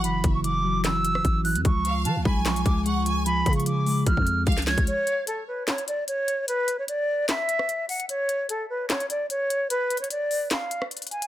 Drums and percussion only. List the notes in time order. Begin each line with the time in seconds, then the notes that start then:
0.04 closed hi-hat
0.24 kick, closed hi-hat
0.44 closed hi-hat
0.84 snare, clap, closed hi-hat
1.05 closed hi-hat
1.15 cross-stick
1.25 kick, closed hi-hat
1.45 closed hi-hat, open hi-hat
1.56 closed hi-hat
1.65 kick, closed hi-hat
1.85 closed hi-hat
2.05 closed hi-hat
2.25 kick
2.46 snare, clap, closed hi-hat
2.56 closed hi-hat
2.66 kick, closed hi-hat
2.86 closed hi-hat
3.06 closed hi-hat
3.26 closed hi-hat
3.46 kick, closed hi-hat
3.53 closed hi-hat
3.60 closed hi-hat
3.66 closed hi-hat
3.86 open hi-hat
4.07 kick, closed hi-hat
4.17 kick
4.27 closed hi-hat
4.47 kick, closed hi-hat
4.52 closed hi-hat
4.57 snare, closed hi-hat
4.62 closed hi-hat
4.67 snare, closed hi-hat
4.78 kick, closed hi-hat
4.87 closed hi-hat
5.07 closed hi-hat
5.27 closed hi-hat
5.68 snare, clap, closed hi-hat
5.78 closed hi-hat
5.88 closed hi-hat
6.08 closed hi-hat
6.28 closed hi-hat
6.48 closed hi-hat
6.68 closed hi-hat
6.88 closed hi-hat
7.29 snare, clap, closed hi-hat
7.49 closed hi-hat
7.59 cross-stick
7.69 closed hi-hat
7.89 closed hi-hat, open hi-hat
8.00 closed hi-hat
8.09 closed hi-hat
8.29 closed hi-hat
8.49 closed hi-hat
8.90 snare, clap, closed hi-hat
9.00 closed hi-hat
9.10 closed hi-hat
9.30 closed hi-hat
9.50 closed hi-hat
9.70 closed hi-hat
9.90 closed hi-hat
9.97 closed hi-hat
10.04 closed hi-hat
10.11 closed hi-hat
10.31 open hi-hat
10.51 snare, clap, closed hi-hat
10.71 closed hi-hat
10.82 cross-stick
10.91 closed hi-hat
10.97 closed hi-hat
11.02 closed hi-hat
11.07 closed hi-hat
11.11 closed hi-hat
11.22 closed hi-hat